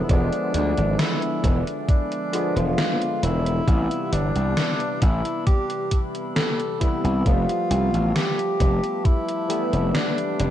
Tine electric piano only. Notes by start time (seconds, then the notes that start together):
Already playing: D3 F3 G#3 B3
0.08 D3 F3 G#3 B3
2.32 D3 F3 G#3 B3
3.66 C3 E3 G3 B3
6.80 C3 E3 G3 B3
7.25 F3 G3 A3 B3
9.48 E3 G3 A3 B3